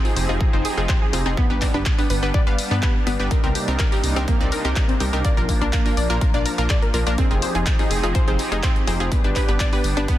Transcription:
Already playing: F3 C4 D#4 G4 G#4
0.05 C4 D#4 F4 G#4, open hi-hat
0.16 F1 C5, open hi-hat
0.29 F1 C4 D#4 F4 G#4
0.41 C4 D#4 F4 G#4, kick
0.53 F1 C4 D#4 F4 C5
0.65 G#4, open hi-hat
0.77 F1 C4 D#4 F4 G#4
0.89 C4 D#4 F4 G4 C5, kick, clap
1.02 G#4
1.13 F1 C4 D#4 F4 G#4, open hi-hat
1.26 F1 C4 D#4 F4 G#4
1.37 G3 B3 D4 G4 B4, kick
1.50 G1 B3 D4 G4 B4
1.62 D5, kick, clap, open hi-hat
1.74 G1 B3 D4 G4 B4
1.86 kick, clap
1.98 B3 D4 G4 B4, open hi-hat
2.10 G1 B4, open hi-hat
2.23 G1 B3 D4 G4 B4
2.34 B3 D4 G4 B4 D5, kick
2.47 G1 B3 D4 G4 B4 F5
2.58 open hi-hat
2.71 G2 B3 D4 G4 B4
2.83 B3 D4 G4 B4, kick, clap
3.07 G1 B3 D4 G4 B4, open hi-hat
3.19 G1 B3 D4 G4 B4
3.31 C3 A#3 C4 D#4 G4 A#4, kick, closed hi-hat
3.44 C2 C4 D#4 G4 A#4, closed hi-hat
3.55 G4, open hi-hat
3.68 C2 C4 D#4 G4 A#4, closed hi-hat
3.79 A#4, kick, clap, closed hi-hat
3.92 C4 D#4 G4 A#4, open hi-hat
4.04 C2, open hi-hat
4.16 C2 C4 D#4 G4 A#4, closed hi-hat
4.28 A#3 C4 D#4 G4 A#4, kick, closed hi-hat
4.41 C2 C4 D#4 G4 D5, closed hi-hat
4.52 A#4, open hi-hat
4.65 C2 C4 D#4 G4 A#4, closed hi-hat
4.76 C4 D#4 G4 A#4, kick, clap, closed hi-hat
4.89 C4, closed hi-hat
5.00 C2 C4 D#4 G4 A#4, open hi-hat
5.13 C2 C4 D#4 G4 A#4, closed hi-hat
5.25 F3 A#3 D4 F4 A#4 D5, kick, closed hi-hat
5.37 A#1 A#3 D4 F4 A#4, closed hi-hat
5.49 kick, open hi-hat
5.61 A#1 A#3 D4 F4 A#4, closed hi-hat
5.73 A#3, kick, clap, closed hi-hat
5.86 A#3 D4 F4 A#4, open hi-hat
5.97 A#1 D5, open hi-hat
6.10 A#1 A#3 D4 F4 A#4, closed hi-hat
6.21 A#3 D4 F4 A#4, kick, closed hi-hat
6.34 A#1 A#3 D4 F4 D5, closed hi-hat
6.46 A#4, open hi-hat
6.58 A#1 A#3 D4 F4 A#4, closed hi-hat
6.70 A#3 F4 G#4 D5, kick, clap, closed hi-hat
6.82 A#4, closed hi-hat
6.94 A#1 A#3 D4 F4 A#4, open hi-hat
7.07 A#1 A#3 D4 F4 A#4, closed hi-hat
7.18 C4 D#4 F4 G4 G#4, kick, closed hi-hat
7.31 F1 C4 D#4 F4 G#4, closed hi-hat
7.42 C5, open hi-hat
7.55 F1 C4 D#4 F4 G#4, closed hi-hat
7.66 kick, clap, closed hi-hat
7.79 C4 D#4 F4 G#4, open hi-hat
7.91 F1 G#4, open hi-hat
8.03 F1 C4 D#4 F4 G#4, closed hi-hat
8.15 C4 D#4 F4 G#4 C5, kick, closed hi-hat
8.28 F1 C4 D#4 F4 G#4 C5, closed hi-hat
8.39 open hi-hat
8.52 F1 C4 D#4 F4 G#4, closed hi-hat
8.63 C4 D#4 F4 G4, kick, clap, closed hi-hat
8.76 closed hi-hat
8.87 F1 C4 D#4 F4 G#4 C5, open hi-hat
9.00 F1 C4 D#4 F4 G#4, closed hi-hat
9.12 B3 D4 G4 B4, kick, closed hi-hat
9.24 G1 B3 D4 G4 B4, closed hi-hat
9.36 B4, kick, clap, open hi-hat
9.48 G1 B3 D4 G4 B4, closed hi-hat
9.60 D5, kick, clap, closed hi-hat
9.73 B3 D4 G4 B4, open hi-hat
9.84 G1, open hi-hat
9.97 G1 B3 D4 G4 B4, closed hi-hat
10.08 B3 D4 G4 B4, kick, closed hi-hat

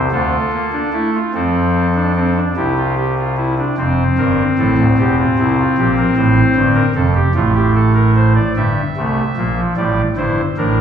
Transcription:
0.12 D2 D3 F4 A4
0.52 A#3
0.72 D4
0.93 A3 E4
1.14 F4
1.34 F2 F3 C4 A4
1.95 D4
2.15 C4
2.36 D4
2.56 C2 C3 E4 G4
2.77 F4
2.97 G4
3.18 F4
3.37 E4
3.58 D4
3.77 F1 F2 C4 C5
4.18 G1 G2 A#4
4.58 A1 A2 A4
4.78 D1 D2
4.98 E1 E2 G4
5.18 F4
5.39 C2 C3 E4
5.59 F4
5.78 A#1 A#2 G4
5.98 A#4
6.16 A1 A2 C5
6.56 G1 G2
6.75 A#4
6.95 F1 F2 A4
7.14 G4
7.34 A1 A2 A3 F4
7.54 G4
7.74 A4
7.95 A#4
8.15 C5
8.35 D5
8.56 G1 G2 G3 E5
8.97 C2 C3 A3
9.37 A#1 A#2 A#3
9.57 F3
9.77 A1 A2 G3 D5
10.16 G1 G2 E4 C5
10.57 A1 A2 D4 A#4

